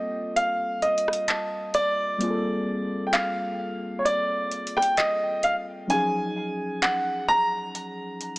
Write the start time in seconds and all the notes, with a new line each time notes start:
Already playing: G3 A#3 C4 F4 A4 D#5 G5
0.36 F5, closed hi-hat
0.82 D#5, closed hi-hat
0.98 closed hi-hat
1.08 cross-stick
1.13 closed hi-hat
1.28 A5, clap, closed hi-hat
1.74 D5, closed hi-hat
2.18 G3 A#3 C4, closed hi-hat
2.22 F4 G#4
2.30 A4
3.07 G5
3.13 F5, clap, closed hi-hat
3.99 C#5
4.05 D5, closed hi-hat
4.51 closed hi-hat
4.67 closed hi-hat
4.77 G5, cross-stick
4.82 closed hi-hat
4.97 D#5, clap, closed hi-hat
5.43 F5, closed hi-hat
5.87 F#3 C#4 D#4 G#5, closed hi-hat
5.91 F3 G#4
6.82 F#5, clap, closed hi-hat
7.28 A#5
7.75 closed hi-hat
8.21 closed hi-hat